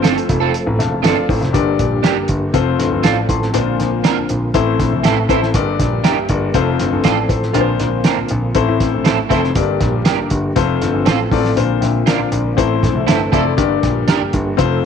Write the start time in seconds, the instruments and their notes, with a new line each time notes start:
Already playing: grand piano G1 C4 F4 A4 C5, tonewheel organ F3 A3 C4 A4
0.02 clean electric guitar C4 F4 A4, snare, closed hi-hat
0.18 closed hi-hat
0.29 grand piano F1, kick, closed hi-hat
0.40 clean electric guitar C4 F4 A4
0.54 closed hi-hat
0.66 grand piano A1
0.79 grand piano E1 F5 A5, snare, closed hi-hat
0.92 grand piano F1
1.03 grand piano G1 D5 F5, clean electric guitar C4 F4 A4, snare, closed hi-hat
1.29 grand piano A1 A4 C5, kick, open hi-hat
1.41 grand piano F1, snare, closed hi-hat
1.53 grand piano G1 G2 D4 G4 A#4 D5, tonewheel organ D3 G3 A#3 G4, kick, closed hi-hat
1.79 grand piano A#1, kick, closed hi-hat
2.03 clean electric guitar D4 G4 A#4, snare, closed hi-hat
2.17 grand piano G1
2.28 grand piano G1, kick, closed hi-hat
2.53 grand piano F1 C4 F4 A4 C5, tonewheel organ F3 A3 C4 A4, kick, closed hi-hat
2.79 grand piano G1, snare, closed hi-hat
2.92 grand piano G1
3.03 grand piano A1 D5 F5, clean electric guitar C4 F4 A4, snare, closed hi-hat
3.29 grand piano A1 A5 C6, kick, closed hi-hat
3.42 snare
3.53 grand piano A#1 A#2 D4 F4 A#4 C5, tonewheel organ D3 A#3 F4, closed hi-hat
3.79 grand piano A#1, snare, closed hi-hat
4.04 clean electric guitar C4 D4 A#4, snare, closed hi-hat
4.17 grand piano A#1
4.29 grand piano A#1, closed hi-hat
4.54 grand piano A1 A2 C4 E4 A4 C5, tonewheel organ E3 A3 A4, kick, closed hi-hat
4.79 grand piano A#1, kick, snare, closed hi-hat
4.93 grand piano C2
5.03 grand piano A1, clean electric guitar C4 E4 A4, snare, closed hi-hat
5.29 grand piano A1 C4 E4 A4 C5, clean electric guitar C4 E4 A4, kick, closed hi-hat
5.43 snare
5.54 grand piano G1 G2 D4 G4 A#4 D5, tonewheel organ D3 G3 A#3 G4, kick, closed hi-hat
5.80 grand piano A#1, kick, snare, closed hi-hat
6.04 clean electric guitar D4 G4 A#4, grand piano E5 G5, snare, closed hi-hat
6.17 grand piano G1
6.29 grand piano G1 A#4 D5, kick, closed hi-hat
6.54 grand piano F1 C4 F4 A4 C5, tonewheel organ F3 A3 C4 A4, kick, closed hi-hat
6.80 grand piano G1, snare, closed hi-hat
6.92 grand piano G1
7.04 grand piano A1 D5, clean electric guitar C4 F4 A4, snare, closed hi-hat
7.29 grand piano A1 A4 C5, kick, closed hi-hat
7.43 snare
7.53 grand piano A#1 A#2 D4 F4 A#4 B4, horn section D3 F3 C4 F4, tonewheel organ D3 A#3 F4, closed hi-hat
7.61 grand piano C5
7.80 grand piano A#1, snare, closed hi-hat
8.04 clean electric guitar C4 D4 A#4, snare, closed hi-hat
8.18 grand piano A#1
8.28 grand piano A#1, closed hi-hat
8.55 grand piano A1 A2 C4 E4 A4 C5, tonewheel organ E3 A3 A4, kick, closed hi-hat
8.69 grand piano A2
8.80 grand piano A1, kick, snare, closed hi-hat
8.94 grand piano A#1
9.04 grand piano A1, clean electric guitar C4 E4 A4, snare, closed hi-hat
9.29 grand piano F1 C4 E4 A4 C5, clean electric guitar C4 E4 A4, kick, closed hi-hat
9.44 snare
9.55 grand piano G1 G2 D4 G4 A#4 D5, tonewheel organ D3 G3 A#3 G4, kick, closed hi-hat
9.80 grand piano A#1, kick, snare, closed hi-hat
10.05 clean electric guitar D4 G4 A#4, snare, closed hi-hat
10.19 grand piano G1
10.30 grand piano G1, kick, closed hi-hat
10.56 grand piano F1 C4 F4 A4 C5, tonewheel organ F3 A3 C4 A4, kick, closed hi-hat
10.82 grand piano G1, snare, closed hi-hat
10.94 grand piano G1
11.05 grand piano A1, clean electric guitar C4 F4 A4, snare, closed hi-hat
11.31 grand piano A1 C4 F4 A4 D5, kick, open hi-hat
11.45 snare
11.56 grand piano A#1 A#2 D4 F4 A#4 C5, tonewheel organ D3 A#3 F4, closed hi-hat
11.81 grand piano A#1 E5 G5, snare, closed hi-hat
12.06 clean electric guitar C4 D4 A#4, grand piano D5 F5, snare, closed hi-hat
12.19 grand piano A#1
12.32 grand piano A#1 A#4 D5, closed hi-hat
12.57 grand piano A1 A2 C4 E4 A4 C5, tonewheel organ E3 A3 A4, kick, closed hi-hat
12.83 grand piano A#1, kick, snare, closed hi-hat
12.95 grand piano C2
13.07 grand piano G1 A5, clean electric guitar C4 E4 A4, snare, closed hi-hat
13.32 grand piano F1 C4 E4 A4 D5, clean electric guitar C4 E4 A4, kick, closed hi-hat
13.57 grand piano G1 G2 D4 G4 A#4 D5, tonewheel organ D3 G3 A#3 G4, kick, closed hi-hat
13.83 grand piano A#1, kick, snare, closed hi-hat
14.08 clean electric guitar D4 G4 A#4, snare, closed hi-hat
14.21 grand piano G1
14.33 grand piano G1, kick, closed hi-hat
14.57 grand piano F1 C4 F4 A4 C5, tonewheel organ F3 A3 C4 A4, kick, closed hi-hat